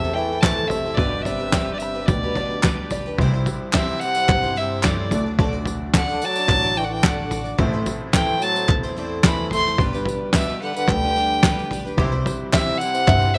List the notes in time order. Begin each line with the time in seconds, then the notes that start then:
Already playing: A1 E2 A2 C3 A3 C4 E4 C5 E5 A5 C6
0.03 A3 C4 E4 A4
0.13 E3 A3 E5 G5
0.17 C4 E4 A4
0.31 A3 C4 E4 A4
0.41 E3 C5 A5, kick, snare, clap, tambourine
0.45 A2 E3 A3 C4 E4 A4
0.67 C3 E5, floor tom, tambourine
0.72 A3 C4 E4 A4
0.85 A3 C4 E4 A4
0.95 G1 G2 B2 G3 B3 D4 B4 D5, kick, floor tom
0.99 G3 D4 G4 B4, tambourine
1.22 C3 G3 D5 E5, floor tom
1.26 D4 G4 B4, tambourine
1.39 D4 G4 B4
1.52 G3 D4 G4 B4 G5, kick, snare, clap, tambourine
1.73 B2 D5
1.78 C3 E5, tambourine
1.82 B5
1.94 D4 G4 B4
2.06 D2 B2 D5 G5, kick, floor tom, tambourine
2.23 D4 G4 B4
2.35 G3 D4 G4 B4 D5, floor tom, tambourine
2.49 D4 G4 B4
2.63 G3 D4 G4 B4, kick, snare, clap, tambourine
2.90 G3 D4 G4 B4 D5, floor tom, tambourine
3.06 D4 G4 B4
3.17 C2 C3 E3 G3 C4 E4 C5 E5, kick, floor tom
3.21 C4 E4 C5
3.34 G3 C4 E4 C5
3.46 floor tom, tambourine
3.73 C3 E3 G3 C4 E4 C5 E5, kick, snare, clap, tambourine
3.88 tambourine
3.99 C3 G3 C4 E4 F#5, tambourine
4.03 C5
4.15 G3 C4 E4 C5, tambourine
4.29 G2, kick, clap, floor tom
4.43 G3 C4 E4 C5, tambourine
4.56 C3 G3 C4 E4 C5 E5, tambourine
4.83 A2 C3 E3 G3 C4 E4 C5 D5, kick, snare, clap, tambourine
5.10 D2 D3 F#3 A3 D4 F#4 A4 D5, floor tom, tambourine
5.14 D5
5.26 D4 F#4 D5
5.39 D3 A3 D4 F#4 D5, kick, floor tom
5.53 D4 F#4 D5
5.65 floor tom, tambourine
5.94 D3 A3 D4 F#4 D5 F#5, kick, snare, clap, tambourine
5.98 D3
6.09 tambourine
6.21 F#3 A3 D4 F#4 D5 A5, tambourine
6.36 D4 F#4 D5, tambourine
6.48 A1, kick, clap, floor tom
6.62 D4 F#4 D5
6.76 E3 A3 D4 F#4 D5 G5, tambourine
6.84 D3 F#5
6.90 E3 G5
7.03 D3 A3 D4 F#4 D5 F#5, kick, snare, clap, tambourine
7.31 A3 D4 F#4 D5, floor tom, tambourine
7.44 D4 F#4 D5, tambourine
7.58 A1 A2 E3 A3 C4 E4 C5 E5, kick, floor tom
7.73 A3 C4 E4 C5
7.86 floor tom, tambourine
8.13 A2 E3 A3 C4 E4 C5 G5, kick, snare, clap, tambourine
8.29 tambourine
8.40 F#3 A3 C4 E4 A5, tambourine
8.44 C5
8.55 A3 C4 E4 C5, tambourine
8.68 E2, kick, clap, floor tom
8.83 A3 C4 E4 C5, tambourine
8.96 A3 C4 E4 C5 D5, tambourine
9.23 A2 E3 A3 C4 E4 C5 B5, kick, snare, clap, tambourine
9.51 A3 C4 E4 C5 C6, floor tom, tambourine
9.66 A3 C4 E4 C5, tambourine
9.78 G1 G2 G3 B3 D4 G4 B4 D5, kick, floor tom, tambourine
9.93 D4 G4 B4, tambourine
10.05 floor tom, tambourine
10.33 B2 G3 D4 G4 B4 E5, kick, snare, clap, tambourine
10.49 tambourine
10.61 D3 G3 D4 G4 B4 F#5
10.75 D3 D4 G4 B4 F#5, tambourine
10.88 D2 D3 G5, kick, clap, floor tom
11.02 D4 G4 B4
11.16 G3 B3 D4 G4 B4 D5, tambourine
11.43 G3 D4 G4 B4, kick, snare, clap, tambourine
11.59 tambourine
11.71 G3 D4 G4 B4, floor tom, tambourine
11.85 D4 G4 B4, tambourine
11.97 C2 C3 E3 G3 C4 E4 G4 C5 E5, kick, floor tom
12.11 G3 C4 E4 C5
12.26 C5, floor tom, tambourine
12.52 C3 E3 G3 C4 E4 C5 E5, kick, snare, clap, tambourine
12.78 C3 G3 C4 E4 C5 F#5, tambourine
12.94 G3 C4 E4 C5, tambourine
13.07 G2 E5, kick, clap, floor tom
13.20 G3 C4 E4 C5, tambourine
13.34 G3 E5